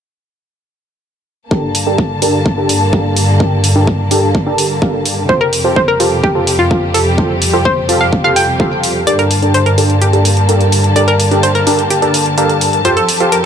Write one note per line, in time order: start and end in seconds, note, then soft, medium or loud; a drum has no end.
1.51 5.25 G2 medium
1.51 5.25 D3 medium
1.51 5.25 A#3 medium
1.51 1.69 D4 medium
1.51 1.69 G4 medium
1.51 1.69 A4 medium
1.51 1.69 A#4 medium
1.51 1.69 G5 medium
1.51 5.25 A5 medium
1.51 kick loud
1.75 open hi-hat loud
1.86 2.04 D4 medium
1.86 2.04 G4 medium
1.86 2.04 A4 medium
1.86 2.04 A#4 medium
1.86 2.04 G5 medium
1.98 kick loud
2.22 2.40 D4 medium
2.22 2.40 G4 medium
2.22 2.40 A4 medium
2.22 2.40 A#4 medium
2.22 2.40 A5 loud
2.22 open hi-hat medium
2.46 kick loud
2.57 2.75 D4 medium
2.57 2.75 G4 medium
2.57 2.75 A4 medium
2.57 2.75 A#4 medium
2.57 2.75 A5 medium
2.69 open hi-hat loud
2.93 3.37 D4 medium
2.93 3.37 G4 medium
2.93 3.37 A4 medium
2.93 3.37 A#4 medium
2.93 3.37 F5 medium
2.93 kick loud
3.17 open hi-hat medium
3.40 3.58 D4 medium
3.40 3.58 G4 medium
3.40 3.58 A4 medium
3.40 3.58 A#4 medium
3.40 3.58 G5 medium
3.40 kick loud
3.64 open hi-hat loud
3.76 3.93 D4 medium
3.76 3.93 G4 medium
3.76 3.93 A4 medium
3.76 3.93 A#4 medium
3.76 3.93 G5 medium
3.87 kick loud
4.11 4.29 D4 medium
4.11 4.29 G4 medium
4.11 4.29 A4 medium
4.11 4.29 A#4 medium
4.11 4.29 A5 loud
4.11 open hi-hat medium
4.35 kick loud
4.46 4.64 D4 medium
4.46 4.64 G4 medium
4.46 4.64 A4 medium
4.46 4.64 A#4 medium
4.46 4.64 A5 medium
4.58 open hi-hat loud
4.82 5.26 D4 medium
4.82 5.26 G4 medium
4.82 5.26 A4 medium
4.82 5.26 A#4 medium
4.82 5.26 F5 medium
4.82 kick loud
5.06 open hi-hat medium
5.29 9.03 F2 medium
5.29 9.03 C3 medium
5.29 9.03 G3 medium
5.29 5.47 F4 medium
5.29 9.03 G4 medium
5.29 5.47 G4 medium
5.29 5.47 A4 medium
5.29 5.34 C5 medium
5.29 5.47 C5 medium
5.29 5.47 G5 medium
5.29 kick loud
5.41 5.77 A#4 medium
5.53 open hi-hat loud
5.64 5.82 F4 medium
5.64 5.82 G4 medium
5.64 5.82 A4 medium
5.64 5.82 C5 medium
5.64 5.82 G5 medium
5.76 5.82 C5 medium
5.76 kick loud
5.88 6.25 A#4 medium
6.00 6.18 F4 loud
6.00 6.18 G4 medium
6.00 6.18 A4 medium
6.00 6.18 C5 medium
6.00 6.18 A5 loud
6.00 open hi-hat medium
6.23 6.60 G4 medium
6.23 kick loud
6.35 6.53 F4 medium
6.35 6.53 G4 medium
6.35 6.53 A4 medium
6.35 6.53 C5 medium
6.35 6.53 A5 medium
6.47 open hi-hat loud
6.59 6.95 F4 medium
6.71 7.15 F4 medium
6.71 7.15 G4 medium
6.71 7.15 A4 medium
6.71 7.15 C5 medium
6.71 7.15 F5 medium
6.71 kick loud
6.94 7.67 A4 medium
6.94 open hi-hat medium
7.18 7.36 F4 medium
7.18 7.36 G4 medium
7.18 7.36 A4 medium
7.18 7.36 C5 medium
7.18 7.36 G5 medium
7.18 kick loud
7.42 open hi-hat loud
7.53 7.71 F4 medium
7.53 7.71 G4 medium
7.53 7.71 A4 medium
7.53 7.71 C5 medium
7.53 7.71 G5 medium
7.65 8.02 C5 loud
7.65 kick loud
7.89 8.07 F4 loud
7.89 8.07 G4 medium
7.89 8.07 A4 medium
7.89 8.07 C5 medium
7.89 8.07 A5 loud
7.89 open hi-hat medium
8.01 8.23 F5 medium
8.13 kick loud
8.24 8.42 F4 medium
8.24 8.42 G4 medium
8.24 8.42 A4 medium
8.24 8.42 C5 medium
8.24 8.35 F5 loud
8.24 8.42 A5 medium
8.36 8.80 G5 loud
8.36 open hi-hat loud
8.60 9.04 F4 medium
8.60 9.04 G4 medium
8.60 9.04 A4 medium
8.60 9.04 C5 medium
8.60 9.04 F5 medium
8.60 kick loud
8.83 open hi-hat medium
9.07 12.81 G2 medium
9.07 12.81 D3 medium
9.07 12.81 A#3 medium
9.07 9.25 D4 medium
9.07 9.25 G4 medium
9.07 9.25 A4 medium
9.07 9.25 A#4 medium
9.07 9.19 D5 loud
9.07 9.25 G5 medium
9.07 13.45 A5 medium
9.07 closed hi-hat medium
9.19 9.55 A#4 loud
9.19 closed hi-hat soft
9.31 open hi-hat loud
9.42 9.60 D4 medium
9.42 9.60 G4 medium
9.42 9.60 A4 medium
9.42 9.60 A#4 medium
9.42 9.60 G5 medium
9.42 closed hi-hat soft
9.54 9.66 C5 loud
9.54 closed hi-hat medium
9.66 10.03 A#4 loud
9.66 closed hi-hat soft
9.78 9.95 D4 loud
9.78 9.95 G4 medium
9.78 9.95 A4 medium
9.78 9.95 A#4 medium
9.78 9.95 A5 loud
9.78 open hi-hat medium
9.90 closed hi-hat soft
10.02 10.34 G4 medium
10.02 closed hi-hat medium
10.13 10.31 D4 medium
10.13 10.31 G4 medium
10.13 10.31 A4 medium
10.13 10.31 A#4 medium
10.13 10.31 A5 medium
10.13 closed hi-hat soft
10.25 open hi-hat loud
10.37 closed hi-hat soft
10.49 10.93 D4 medium
10.49 10.93 G4 medium
10.49 10.93 A4 medium
10.49 10.93 A#4 medium
10.49 10.93 F5 medium
10.49 closed hi-hat medium
10.61 closed hi-hat soft
10.72 open hi-hat medium
10.84 closed hi-hat soft
10.96 11.14 D4 medium
10.96 11.14 G4 medium
10.96 11.14 A4 medium
10.96 11.14 A#4 medium
10.96 11.08 D5 loud
10.96 11.14 G5 medium
10.96 closed hi-hat medium
11.08 11.44 A#4 loud
11.08 closed hi-hat soft
11.20 open hi-hat loud
11.31 11.49 D4 medium
11.31 11.49 G4 medium
11.31 11.49 A4 medium
11.31 11.49 A#4 medium
11.31 11.49 G5 medium
11.31 closed hi-hat soft
11.43 11.48 C5 loud
11.43 closed hi-hat medium
11.55 11.92 A#4 loud
11.55 closed hi-hat soft
11.67 11.84 D4 loud
11.67 11.84 G4 medium
11.67 11.84 A4 medium
11.67 11.84 A#4 medium
11.67 11.84 A5 loud
11.67 open hi-hat loud
11.79 closed hi-hat soft
11.90 12.23 G4 medium
11.90 closed hi-hat medium
12.02 12.20 D4 medium
12.02 12.20 G4 medium
12.02 12.20 A4 medium
12.02 12.20 A#4 medium
12.02 12.20 A5 medium
12.02 closed hi-hat soft
12.14 open hi-hat loud
12.26 closed hi-hat soft
12.38 12.82 D4 medium
12.38 12.82 G4 medium
12.38 12.82 A4 medium
12.38 12.82 A#4 medium
12.38 12.82 F5 medium
12.38 closed hi-hat medium
12.49 closed hi-hat soft
12.61 open hi-hat medium
12.73 closed hi-hat soft
12.85 13.45 F2 medium
12.85 13.45 F3 medium
12.85 13.03 F4 medium
12.85 13.03 G4 medium
12.85 13.45 G4 medium
12.85 13.03 A4 medium
12.85 13.03 C5 medium
12.85 12.90 C5 loud
12.85 13.03 G5 medium
12.85 closed hi-hat medium
12.97 13.30 A4 loud
12.97 closed hi-hat soft
13.09 open hi-hat loud
13.20 13.38 F4 medium
13.20 13.38 G4 medium
13.20 13.38 A4 medium
13.20 13.38 C5 medium
13.20 13.38 G5 medium
13.20 closed hi-hat soft
13.32 13.44 A#4 loud
13.32 closed hi-hat medium